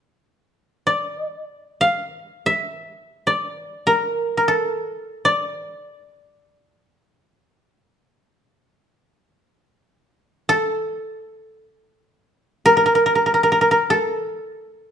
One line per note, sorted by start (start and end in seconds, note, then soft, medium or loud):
0.87 2.47 D5 medium
1.81 2.52 F5 medium
2.46 3.95 E5 medium
3.27 4.87 D5 medium
3.87 4.37 A#4 medium
4.37 4.54 A#4 medium
4.48 6.38 A4 medium
5.25 7.97 D5 medium
10.49 12.63 A4 medium
12.66 12.76 A#4 medium
12.77 12.85 A#4 medium
12.86 12.95 A#4 medium
12.95 13.06 A#4 medium
13.06 13.15 A#4 medium
13.15 13.26 A#4 soft
13.26 13.34 A#4 medium
13.34 13.43 A#4 medium
13.43 13.51 A#4 medium
13.52 13.61 A#4 medium
13.61 13.71 A#4 medium
13.71 13.96 A#4 medium
13.90 14.91 A4 medium